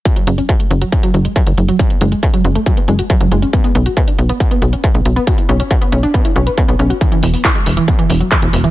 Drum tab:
HH |xxxxxxxxxxxxxxxx|xxxxxxxxxxxxxxxx|xxxxxxxxxxxxxxxx|xxxxxxxxxxxxxxxx|
CP |----------------|----------------|----------------|----------------|
BD |o---o---o---o---|o---o---o---o---|o---o---o---o---|o---o---o---o---|

HH |xxooxxoxxxoxxxox|
CP |----x-------x---|
BD |o---o---o---o---|